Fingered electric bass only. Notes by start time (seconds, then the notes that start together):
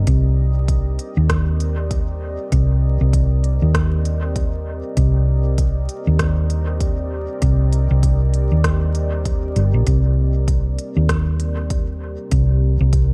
0.07 C2
1.17 D#2
2.52 C2
3.01 C2
3.62 D#2
4.97 C2
6.07 D#2
7.42 C2
7.91 C2
8.52 D#2
9.56 G1
9.74 A#1
9.87 C2
10.97 D#2
12.32 C2
12.81 C2